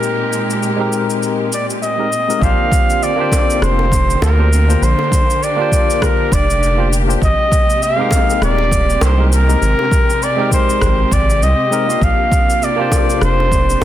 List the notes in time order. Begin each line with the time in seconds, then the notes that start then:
Already playing: A#2 G#3 C4 D#4 G4 A#4
0.03 cabasa
0.33 cabasa
0.50 cabasa
0.63 cabasa
0.76 G#3 C4 D#4 G4
0.81 A#4
0.93 cabasa
1.10 cabasa
1.23 cabasa
1.53 D5, cabasa
1.70 cabasa
1.83 D#5, cabasa
1.98 G#3 C4 D#4 G4 A#4
2.13 cabasa
2.28 G#3 C4 D#4 G4 A#4, cabasa
2.39 A#1 D3 A#3 C4 D4 F4 G4 F5, kick, cabasa
2.44 C5
2.72 kick, cabasa
2.90 cabasa
3.03 D5, cabasa
3.16 A#3 D4 F4
3.20 G4 C5
3.32 kick, high bongo, cabasa
3.50 cabasa
3.62 F1 C5, cross-stick, cabasa
3.79 high bongo
3.92 kick, cabasa
4.10 cabasa
4.22 D2 A#4, high bongo, cabasa
4.38 A#3 D4 F4 G4 C5
4.53 cabasa
4.68 A#3 D4 F4 G4 C5, cabasa
4.82 A#1 D4 C5, cabasa
4.99 high bongo
5.12 kick, cabasa
5.30 cabasa
5.43 D5, cabasa
5.56 A#3 D4 F4 G4
5.61 C5
5.72 kick, cabasa
5.90 cabasa
6.02 A#4, kick, cross-stick, cabasa
6.32 F1 D5, kick, cabasa
6.50 cabasa
6.63 cabasa
6.77 A#3 D4 F4 G4 C5
6.93 cabasa
7.07 A#3 D4 F4 G4 C5, cabasa
7.21 G#1 C3 G#3 A#3 D#5, kick, cabasa
7.52 kick, cabasa
7.70 cabasa
7.83 F5, cabasa
7.96 G#3 C4 D#4 G4
8.01 A#4
8.11 kick, high bongo, cabasa
8.30 cabasa
8.41 D#1 D5, cross-stick, cabasa
8.58 high bongo
8.71 kick, cabasa
8.90 cabasa
9.01 C2 C5, high bongo, cabasa
9.18 G#3 C4 D#4 G4 A#4
9.26 C5
9.33 A#4, cabasa
9.47 G#3 C4 D#4 G4 A#4, cabasa
9.62 G#1 C4, cabasa
9.79 high bongo
9.91 kick, cabasa
10.10 cabasa
10.22 D5, cabasa
10.36 G#3 C4 D#4 G4
10.41 A#4
10.51 C5, kick, cabasa
10.70 cabasa
10.81 G#1, kick, cross-stick, cabasa
11.11 G#1 D5, kick, cabasa
11.30 cabasa
11.42 C2 D#5, cabasa
11.71 G#3 C4 D#4 G4 A#4, cabasa
11.86 A#3 D4 F4 G4, cabasa
11.91 F5
12.01 A#1 C3 A#3 D4 F5, kick, cabasa
12.32 kick, cabasa
12.50 cabasa
12.62 D5, cabasa
12.76 A#3 D4 F4 G4
12.81 C5
12.92 kick, high bongo, cabasa
13.10 cabasa
13.21 F1 C5, cross-stick, cabasa
13.40 high bongo
13.52 kick, cabasa
13.70 cabasa